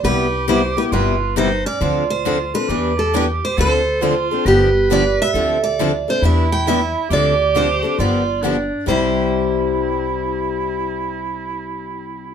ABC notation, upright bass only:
X:1
M:4/4
L:1/8
Q:"Swing" 1/4=136
K:C
V:1 name="Upright bass" clef=bass
C,,4 G,,,4 | D,,4 E,,4 | D,,4 G,,,4 | D,,4 E,,4 |
D,,4 G,,,4 | C,,8- | C,,8 |]